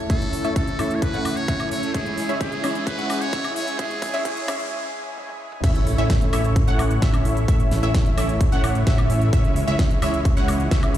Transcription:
Already playing: grand piano A2 E3 A3 C#4 E4, analog synth pad C#3 A3 E4 A4, riser
0.09 grand piano A2 E3 A3 C#4 E4, supersaw synth A3 C#4 E4 C#5 E5, muted trumpet A4, synth pluck E5, kick, closed hi-hat
0.21 closed hi-hat
0.33 open hi-hat
0.44 supersaw synth A3 C#4 E4 C#5 E5, synth pluck E5, closed hi-hat
0.56 muted trumpet A4, kick, closed hi-hat
0.68 closed hi-hat
0.78 grand piano A2 E3 A3 C#4 E4, supersaw synth A3 C#4 E4 C#5 E5, synth pluck E5, open hi-hat, high woodblock
0.91 closed hi-hat
0.95 muted trumpet C#5
1.02 muted trumpet B4, kick, closed hi-hat
1.14 supersaw synth A3 C#4 E4 C#5 F#5, synth pluck F#5, closed hi-hat
1.25 open hi-hat, high woodblock
1.37 muted trumpet C#5, closed hi-hat
1.48 supersaw synth A3 C#4 E4 C#5 E5, synth pluck E5, kick, closed hi-hat
1.60 closed hi-hat, high woodblock
1.71 muted trumpet C#5, open hi-hat
1.83 closed hi-hat
1.93 grand piano E3 G#3 C#4 E4, analog synth pad G#3 G#4, supersaw synth G#3 C#4 E4 C#5 E5, muted trumpet G#4, synth pluck E5, kick, closed hi-hat
2.06 closed hi-hat
2.18 open hi-hat
2.29 supersaw synth G#3 C#4 E4 C#5 E5, synth pluck E5, closed hi-hat
2.41 muted trumpet G#4, kick, closed hi-hat
2.52 closed hi-hat
2.62 grand piano E3 G#3 C#4 E4, supersaw synth G#3 C#4 E4 C#5 E5, synth pluck E5, open hi-hat, high woodblock
2.75 closed hi-hat
2.87 muted trumpet B4, kick, closed hi-hat
2.98 supersaw synth G#3 C#4 E4 C#5 F#5, synth pluck F#5, closed hi-hat
3.10 open hi-hat, high woodblock
3.21 muted trumpet C#5, closed hi-hat
3.33 supersaw synth G#3 C#4 E4 C#5 E5, synth pluck E5, kick, closed hi-hat
3.44 closed hi-hat, high woodblock
3.56 muted trumpet C#5, open hi-hat
3.68 closed hi-hat
3.78 grand piano E3 G#3 C#4 E4, supersaw synth G#3 C#4 E4 C#5 E5, muted trumpet G#4, synth pluck E5, kick, closed hi-hat
3.91 closed hi-hat
4.02 kick, open hi-hat
4.14 supersaw synth G#3 C#4 E4 C#5 E5, synth pluck E5, closed hi-hat
4.25 muted trumpet G#4, kick, closed hi-hat
4.37 closed hi-hat
4.47 grand piano E3 G#3 C#4 E4, supersaw synth G#3 C#4 E4 C#5 E5, synth pluck E5, kick, open hi-hat, high woodblock
4.60 closed hi-hat
5.18 high tom
5.29 high tom
5.52 mid tom
5.64 analog synth bass A1, analog synth pad C#3 E3 A3 E4, supersaw synth A3 C#4 E4 C#5 E5, synth pluck E5, kick, closed hi-hat, crash, impact
5.75 closed hi-hat
5.87 open hi-hat
5.98 analog synth bass A1, supersaw synth A3 C#4 E4 C#5 E5, synth pluck E5, closed hi-hat
6.10 kick, snare, closed hi-hat
6.21 closed hi-hat
6.33 analog synth bass A1, supersaw synth A3 C#4 E4 C#5 E5, synth pluck E5, open hi-hat, high woodblock
6.44 closed hi-hat
6.56 kick, closed hi-hat
6.68 analog synth bass A1, supersaw synth A3 C#4 E4 C#5 F#5, synth pluck F#5, closed hi-hat
6.79 open hi-hat, high woodblock
6.91 closed hi-hat
7.02 analog synth bass A1, supersaw synth A3 C#4 E4 C#5 E5, synth pluck E5, kick, snare, closed hi-hat
7.14 closed hi-hat, high woodblock
7.25 open hi-hat
7.37 closed hi-hat
7.48 analog synth bass A1, supersaw synth A3 C#4 E4 C#5 E5, synth pluck E5, kick, closed hi-hat
7.60 closed hi-hat
7.71 snare, open hi-hat
7.83 analog synth bass A1, supersaw synth A3 C#4 E4 C#5 E5, synth pluck E5, closed hi-hat
7.94 kick, snare, closed hi-hat
8.06 closed hi-hat
8.18 analog synth bass A1, supersaw synth A3 C#4 E4 C#5 E5, synth pluck E5, open hi-hat, high woodblock
8.29 closed hi-hat
8.41 kick, closed hi-hat
8.52 analog synth bass A1, supersaw synth A3 C#4 E4 C#5 F#5, synth pluck F#5, closed hi-hat
8.64 open hi-hat, high woodblock
8.75 closed hi-hat
8.87 analog synth bass A1, supersaw synth A3 C#4 E4 C#5 E5, synth pluck E5, kick, snare, closed hi-hat
8.98 closed hi-hat, high woodblock
9.10 open hi-hat
9.21 closed hi-hat
9.33 analog synth bass C#2, supersaw synth G#3 C#4 E4 C#5 E5, analog synth pad G#3, synth pluck E5, kick, closed hi-hat
9.45 closed hi-hat
9.56 open hi-hat
9.68 analog synth bass C#2, supersaw synth G#3 C#4 E4 C#5 E5, synth pluck E5, closed hi-hat
9.79 kick, snare, closed hi-hat
9.91 closed hi-hat
10.02 analog synth bass C#2, supersaw synth G#3 C#4 E4 C#5 E5, synth pluck E5, open hi-hat, high woodblock
10.14 closed hi-hat
10.25 kick, closed hi-hat
10.37 analog synth bass C#2, supersaw synth G#3 C#4 E4 C#5 F#5, synth pluck F#5, closed hi-hat
10.48 open hi-hat, high woodblock
10.60 closed hi-hat
10.71 analog synth bass C#2, supersaw synth G#3 C#4 E4 C#5 E5, synth pluck E5, kick, snare, closed hi-hat
10.83 closed hi-hat, high woodblock
10.95 open hi-hat

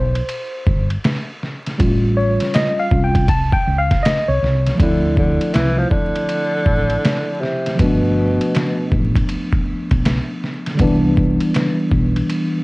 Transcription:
Already playing: fretless electric bass B1, tine electric piano C5
0.15 ride
0.29 ride
0.67 fretless electric bass G1, kick
0.90 ride
1.04 snare, hi-hat pedal, ride
1.43 snare
1.66 snare, ride
1.78 fretless electric bass A1, tine electric piano G3 C#4 F4, kick, ride
2.17 tine electric piano C#5
2.40 snare, ride
2.54 tine electric piano D#5, snare, hi-hat pedal, ride
2.80 tine electric piano F5
2.91 fretless electric bass C2, tine electric piano G3 C#4 F4, kick
3.04 tine electric piano G5
3.15 kick, ride
3.28 tine electric piano A5, kick, ride
3.53 tine electric piano G5, kick
3.67 fretless electric bass C#2
3.78 tine electric piano F5
3.91 kick, snare, ride
4.03 tine electric piano D#5, snare, hi-hat pedal, ride
4.28 fretless electric bass C2, tine electric piano C#5
4.42 fretless electric bass C2, snare
4.66 snare, ride
4.75 tine electric piano F3 A3
4.80 fretless electric bass D2, tenor saxophone D3, tine electric piano C4 E4, kick, ride
5.17 tenor saxophone D3, kick
5.41 ride
5.54 fretless electric bass C2, tenor saxophone E3, snare, hi-hat pedal, ride
5.78 tenor saxophone F3
5.90 tenor saxophone D3, kick
6.16 ride
6.29 ride
6.66 fretless electric bass A1, kick
6.90 ride
7.05 snare, hi-hat pedal, ride
7.41 tenor saxophone C3, snare
7.66 snare, ride
7.75 tine electric piano F3 A3
7.79 fretless electric bass G1, tenor saxophone B2, tine electric piano B3 D4, kick, ride
8.41 ride
8.54 snare, hi-hat pedal, ride
8.91 fretless electric bass A1, kick
9.15 kick, ride
9.29 ride
9.53 kick
9.91 fretless electric bass B1, kick, ride
10.05 snare, hi-hat pedal, ride
10.44 snare
10.66 snare, ride
10.75 tine electric piano D3 G3
10.79 fretless electric bass C2, tine electric piano E3 B3 D4, kick, ride
11.17 kick
11.40 ride
11.55 snare, hi-hat pedal, ride
11.92 fretless electric bass B1, kick
12.16 ride
12.30 ride

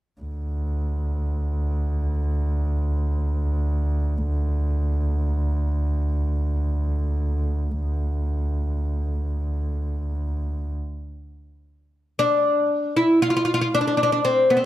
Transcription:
0.21 double bass D2
12.19 oud D4
12.97 oud E4
13.22 oud F4
13.30 oud F4
13.37 oud F4
13.45 oud F4
13.54 oud F4
13.61 oud F4
13.75 oud D4
13.81 oud D4
13.87 oud D4
13.97 oud D4
14.03 oud D4
14.12 oud D4
14.25 oud C4
14.50 oud B3
14.57 oud C4

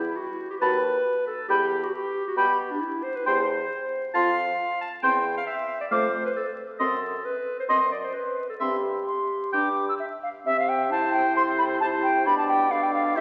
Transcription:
Already playing: clarinet E4
0.17 clarinet F#4
0.51 clarinet G4
0.61 bassoon D#2, french horn F#4, clarinet B4, oboe A5, flute B5
1.27 clarinet A4
1.49 bassoon E2, clarinet G4, french horn G4, oboe G5, flute B5
1.84 clarinet F#4
1.94 clarinet G4
2.28 clarinet F#4
2.37 bassoon B2, clarinet G4, french horn G4, oboe G5, flute B5
2.71 clarinet D4
2.80 clarinet E4
3.03 clarinet C5
3.16 clarinet B4
3.26 bassoon E2, french horn G4, clarinet C5, oboe G5, flute C6
4.14 bassoon F2, french horn F4, clarinet F5, oboe A5, flute C6
4.81 clarinet A5
5.03 bassoon E2, french horn C4, clarinet G5, oboe G5, flute C6
5.37 clarinet F5
5.47 clarinet E5
5.81 clarinet D5
5.91 bassoon F2, french horn A3, clarinet C5, oboe F5, flute D6
6.26 clarinet B4
6.36 clarinet A4
6.79 bassoon F#2, french horn C4, clarinet A4, oboe D#5, flute C6
7.25 clarinet B4
7.60 clarinet C5
7.69 bassoon F#2, french horn C4, oboe D#5, clarinet D#5, flute C6
7.92 clarinet D5
8.04 clarinet C5
8.14 clarinet B4
8.50 clarinet A4
8.60 bassoon G2, french horn C4, clarinet G4, oboe E5, flute C6
9.07 flute C6
9.53 bassoon G2, french horn D4, oboe G5, flute D6
9.89 flute E6
9.99 flute E5
10.23 flute F5
10.46 bassoon C3, french horn C4, clarinet G4, flute E5, oboe E5
10.59 flute F5
10.69 flute G5
10.91 french horn E4, oboe C5, flute A5
11.13 flute G5
11.36 clarinet A4, flute C6
11.58 flute B5
11.80 french horn E4, clarinet G4, oboe C5, flute A5
12.03 flute G5
12.26 bassoon B2, french horn D4, clarinet G4, oboe D5, flute B5
12.38 flute A5
12.48 flute G5
12.71 french horn D4, clarinet A4, oboe D5, flute F5
12.83 flute G5
12.93 flute F5
13.16 bassoon C3, french horn E4, clarinet G4, oboe C5, flute E5

